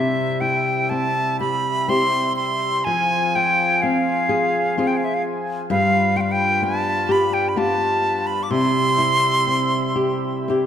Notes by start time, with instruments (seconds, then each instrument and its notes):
Already playing: accordion C3 G3 E4, nylon-string guitar C3 G4, flute E5
0.41 nylon-string guitar E4, flute G5
0.90 nylon-string guitar C4, flute A5
1.40 nylon-string guitar G4, flute B5
1.88 nylon-string guitar C4 E4 G4, flute C6
2.36 flute C6
2.84 nylon-string guitar F3, accordion C4 G#4, flute G#5
2.89 accordion F3
3.35 nylon-string guitar F4, flute G5
3.82 nylon-string guitar C4, flute F5
4.29 nylon-string guitar G#4
4.78 nylon-string guitar C4 F4 G#4
4.87 flute G5
4.97 flute F5
5.04 flute E5
5.14 flute F5
5.70 nylon-string guitar G2, accordion G2 B4, flute F5
6.16 nylon-string guitar F4, flute G5
6.21 flute F5
6.32 flute G5
6.62 nylon-string guitar B3, flute A5
7.09 nylon-string guitar G4, flute B5
7.33 flute G5
7.49 flute B5
7.56 nylon-string guitar B3 F4 G4, flute A5
8.27 flute B5
8.43 flute D6
8.50 accordion C3 G3 E4, nylon-string guitar C3, flute C6
8.98 nylon-string guitar E4
9.47 nylon-string guitar C4
9.96 nylon-string guitar G4
10.48 nylon-string guitar C4 E4 G4